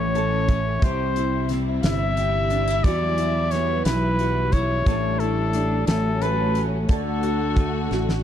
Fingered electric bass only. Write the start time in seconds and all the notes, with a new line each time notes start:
Already playing: A1
0.82 C2
1.84 G1
2.84 E2
3.86 B1
4.86 A1
5.88 A1
6.89 D2
7.91 A1